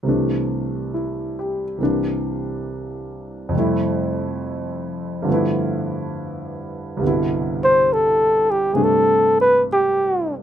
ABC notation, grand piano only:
X:1
M:4/4
L:1/16
Q:"Swing" 1/4=69
K:C
V:1 name="Grand piano"
z4 E2 G3 z6 z | z16 | z16 |]
V:2 name="Grand piano" clef=bass
[C,,C,E,A,D]8 [C,,C,E,_B,D]8 | [F,,C,G,A,E]8 [G,,D,F,A,B,E]8 | [C,,G,,B,,D,E]8 [G,,C,A,D]8 |]